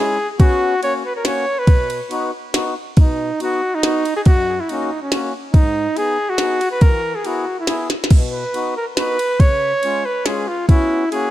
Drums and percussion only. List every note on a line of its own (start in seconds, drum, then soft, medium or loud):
0.40 kick medium
0.40 ride soft
0.83 ride soft
1.25 snare medium
1.25 ride soft
1.67 kick medium
1.67 ride soft
1.90 ride soft
2.11 ride soft
2.54 snare medium
2.54 ride soft
2.97 kick medium
2.97 ride soft
3.40 ride soft
3.83 snare medium
3.83 ride soft
4.05 ride soft
4.25 kick medium
4.25 ride soft
4.69 ride soft
5.12 snare medium
5.12 ride soft
5.54 kick medium
5.54 ride soft
5.97 ride soft
6.38 snare medium
6.38 ride soft
6.61 ride soft
6.81 kick medium
6.81 ride soft
7.25 ride soft
7.67 snare medium
7.67 ride soft
7.90 snare soft
8.04 snare medium
8.10 kick medium
8.10 ride soft
8.10 crash medium
8.54 ride soft
8.97 snare medium
8.97 ride soft
9.19 ride soft
9.40 kick medium
9.40 ride soft
9.83 ride soft
10.26 snare medium
10.26 ride soft
10.69 kick medium
10.69 ride soft
11.12 ride soft